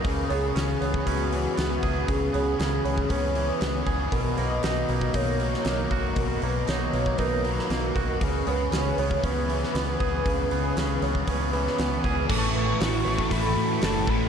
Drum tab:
CC |----------------|----------------|----------------|----------------|
HH |o-o-o-o-o-o-o-o-|o-o-o-o-o-o-o-o-|o-o-o-o-o-o-o-o-|o-o-o-o-o-o-o-o-|
SD |----o-------o---|----o-------o---|----o------oo---|----o------oo---|
BD |o------oo-----o-|o------oo-----o-|o------oo-----o-|o------oo-----o-|

CC |----------------|----------------|x---------------|
HH |o-o-o-o-o-o-o-o-|o-o-o-o-o-o-o-o-|----o---o---o---|
SD |----o------oo---|----o------oo---|----o-------o---|
BD |o------oo-----o-|o------oo-----o-|o------oo-----o-|